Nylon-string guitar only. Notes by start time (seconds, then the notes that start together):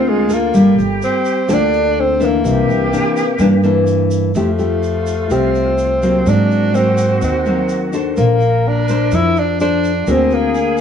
Already playing: D3 A#3 C4
0.28 A#3 F4 A4
0.54 G3
1.48 D3 A#3 F4 A4
2.20 E3 A#3 D4
2.45 C3
2.92 E3 A#3 D4
3.40 G2 E3 A#3 D4
3.64 E3 A#3 D4
4.36 F3 A3 E4 G4
4.58 A3 G4
5.31 C3 A3 G4
6.03 F#3 A#3 C4
6.26 G#2
6.74 F#3 A#3 C4
7.22 D#3
7.46 F#3 A#3 C4
7.93 D4 A4 C5
8.17 A#3
8.89 D4 C5
9.12 F3
9.60 D4 A4 C5
10.07 D3 A#3 C4 F#4